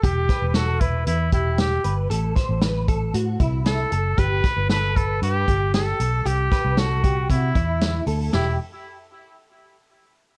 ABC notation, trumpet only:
X:1
M:4/4
L:1/16
Q:1/4=116
K:Em
V:1 name="Trumpet"
G3- G/2 G/2 F2 E2 E2 E2 G3 z | z12 A4 | B4 B2 A2 G4 A4 | G4 F4 E6 z2 |
E2 z12 z2 |]